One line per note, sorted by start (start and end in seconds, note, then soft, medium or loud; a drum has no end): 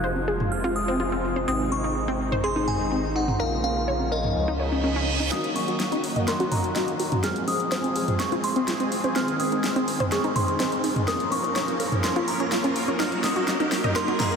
0.00 1.45 F1 medium
0.00 3.36 C3 medium
0.00 1.46 F3 medium
0.00 3.36 G#3 medium
0.00 1.46 F4 medium
0.00 0.08 C5 medium
0.00 0.24 F#6 medium
0.16 high conga medium
0.28 0.32 G#4 medium
0.40 mid tom medium
0.52 0.76 F6 loud
0.64 0.70 F4 loud
0.64 high conga medium
0.76 1.47 D#6 loud
0.88 0.94 C4 loud
1.00 1.04 F4 medium
1.00 high conga medium
1.12 1.16 C4 medium
1.36 1.42 C5 medium
1.36 high conga medium
1.48 3.38 G#1 medium
1.48 3.38 D#3 medium
1.48 1.52 C4 loud
1.48 3.38 D#4 medium
1.48 1.59 D#6 loud
1.72 2.46 C#6 loud
1.72 high conga medium
1.84 1.94 D#4 medium
2.08 2.18 C4 loud
2.08 high conga medium
2.32 2.38 C5 loud
2.32 mid tom medium
2.44 2.48 G#4 loud
2.44 2.69 C6 medium
2.56 2.65 D#4 loud
2.56 high conga medium
2.68 3.17 G#5 loud
2.68 mid tom medium
2.92 2.96 C4 medium
2.92 high conga medium
3.16 3.20 D#4 medium
3.16 3.38 F#5 medium
3.28 mid tom medium
3.28 high conga medium
3.40 4.33 A#1 medium
3.40 5.30 C#3 medium
3.40 5.30 F3 medium
3.40 4.35 A#3 medium
3.40 4.35 F4 medium
3.40 3.50 A#4 medium
3.40 3.63 F5 medium
3.64 4.13 F5 medium
3.64 high conga medium
3.88 3.92 C#5 medium
4.00 high conga medium
4.12 4.16 A#4 medium
4.12 5.04 D#5 medium
4.24 mid tom medium
4.36 5.29 C#2 medium
4.36 5.31 G#3 medium
4.36 5.31 D#4 medium
4.36 reverse cymbal medium
4.48 4.54 D#4 loud
4.48 high conga medium
4.60 4.70 C#5 medium
4.72 4.81 C#4 medium
4.84 4.90 C#4 medium
4.84 high conga medium
4.96 5.05 C#4 loud
5.20 5.26 D#4 medium
5.20 high conga medium
5.32 7.22 D#3 medium
5.32 7.22 F#3 medium
5.32 7.22 A#3 medium
5.32 5.36 D#4 loud
5.32 7.22 F#4 medium
5.32 5.43 D#6 loud
5.32 snare soft
5.32 closed hi-hat medium
5.32 riser medium
5.44 closed hi-hat soft
5.56 6.00 C#6 medium
5.56 open hi-hat loud
5.56 high conga medium
5.68 5.78 F#4 medium
5.68 closed hi-hat soft
5.80 snare soft
5.80 closed hi-hat medium
5.92 6.02 D#4 loud
5.92 closed hi-hat soft
5.92 high conga medium
6.04 open hi-hat medium
6.16 6.22 D#5 loud
6.16 closed hi-hat soft
6.16 mid tom medium
6.28 6.32 A#4 loud
6.28 6.52 C6 medium
6.28 snare soft
6.28 closed hi-hat medium
6.40 6.49 F#4 loud
6.40 closed hi-hat soft
6.40 high conga loud
6.52 7.20 A#5 medium
6.52 mid tom medium
6.52 open hi-hat loud
6.64 closed hi-hat soft
6.76 6.80 D#4 medium
6.76 snare soft
6.76 closed hi-hat medium
6.76 high conga medium
6.88 closed hi-hat soft
7.00 7.04 F#4 medium
7.00 open hi-hat medium
7.12 closed hi-hat soft
7.12 mid tom medium
7.12 high conga loud
7.24 9.14 F3 medium
7.24 11.04 G#3 medium
7.24 11.04 C4 medium
7.24 7.34 G#4 medium
7.24 11.04 G#4 medium
7.24 7.49 F6 loud
7.24 snare medium
7.24 closed hi-hat medium
7.36 closed hi-hat soft
7.48 7.92 D#6 medium
7.48 open hi-hat loud
7.48 high conga medium
7.60 closed hi-hat soft
7.72 7.76 C5 medium
7.72 snare medium
7.72 closed hi-hat medium
7.84 closed hi-hat soft
7.84 high conga medium
7.96 8.00 G#4 medium
7.96 open hi-hat medium
8.08 closed hi-hat soft
8.08 mid tom medium
8.20 8.45 C#6 medium
8.20 snare medium
8.20 closed hi-hat medium
8.32 8.38 F4 loud
8.32 closed hi-hat soft
8.32 high conga medium
8.44 9.18 C6 medium
8.44 open hi-hat loud
8.56 8.62 C4 loud
8.56 closed hi-hat soft
8.68 8.72 F4 medium
8.68 snare medium
8.68 closed hi-hat medium
8.68 high conga medium
8.80 8.84 C4 medium
8.80 closed hi-hat soft
8.92 open hi-hat medium
9.04 9.10 C5 medium
9.04 closed hi-hat soft
9.04 high conga loud
9.16 11.06 D#3 medium
9.16 9.20 C4 loud
9.16 9.41 F6 loud
9.16 snare medium
9.16 closed hi-hat medium
9.28 closed hi-hat soft
9.40 9.84 D#6 medium
9.40 open hi-hat loud
9.40 high conga medium
9.52 9.62 D#4 medium
9.52 closed hi-hat soft
9.64 snare medium
9.64 closed hi-hat medium
9.76 9.86 C4 loud
9.76 closed hi-hat soft
9.76 high conga medium
9.88 open hi-hat medium
10.00 10.06 C5 loud
10.00 closed hi-hat soft
10.00 mid tom medium
10.12 10.16 G#4 loud
10.12 10.37 C#6 medium
10.12 snare medium
10.12 closed hi-hat medium
10.24 10.34 D#4 loud
10.24 closed hi-hat soft
10.24 high conga medium
10.36 11.10 C6 medium
10.36 mid tom medium
10.36 open hi-hat loud
10.48 closed hi-hat soft
10.60 10.64 C4 medium
10.60 snare medium
10.60 closed hi-hat medium
10.60 high conga medium
10.72 closed hi-hat soft
10.84 10.88 D#4 medium
10.84 open hi-hat medium
10.96 closed hi-hat soft
10.96 mid tom loud
10.96 high conga loud
11.08 12.98 F3 medium
11.08 14.36 A#3 medium
11.08 12.98 C#4 medium
11.08 11.18 A#4 medium
11.08 14.36 A#4 medium
11.08 11.30 D#6 loud
11.08 snare medium
11.08 closed hi-hat medium
11.20 closed hi-hat soft
11.32 11.76 C#6 medium
11.32 open hi-hat loud
11.32 high conga medium
11.44 closed hi-hat soft
11.56 11.60 C#5 medium
11.56 snare medium
11.56 closed hi-hat medium
11.68 closed hi-hat soft
11.68 high conga medium
11.80 11.84 A#4 medium
11.80 open hi-hat medium
11.92 closed hi-hat soft
11.92 mid tom medium
12.04 12.29 C6 medium
12.04 snare medium
12.04 closed hi-hat medium
12.16 12.22 F4 loud
12.16 closed hi-hat soft
12.16 high conga medium
12.28 13.02 A#5 medium
12.28 open hi-hat loud
12.40 12.46 C#4 loud
12.40 closed hi-hat soft
12.52 12.56 F4 medium
12.52 snare medium
12.52 closed hi-hat medium
12.52 high conga medium
12.64 12.68 C#4 medium
12.64 closed hi-hat soft
12.76 open hi-hat medium
12.88 12.94 C#5 medium
12.88 closed hi-hat soft
12.88 high conga loud
13.00 14.36 F#3 medium
13.00 14.36 D#4 medium
13.00 13.04 D#4 loud
13.00 13.11 F6 loud
13.00 snare medium
13.00 closed hi-hat medium
13.12 closed hi-hat soft
13.24 13.69 D#6 medium
13.24 snare medium
13.24 open hi-hat loud
13.24 high conga medium
13.36 13.45 F#4 medium
13.36 closed hi-hat soft
13.48 snare medium
13.48 closed hi-hat medium
13.60 13.70 D#4 loud
13.60 closed hi-hat soft
13.60 high conga medium
13.72 snare medium
13.72 open hi-hat medium
13.84 13.90 D#5 loud
13.84 closed hi-hat soft
13.84 mid tom medium
13.96 14.00 A#4 loud
13.96 14.06 C6 medium
13.96 snare medium
13.96 closed hi-hat medium
14.08 14.17 F#4 loud
14.08 closed hi-hat soft
14.08 high conga medium
14.20 14.36 A#5 medium
14.20 snare medium
14.20 mid tom medium
14.20 open hi-hat loud
14.32 closed hi-hat soft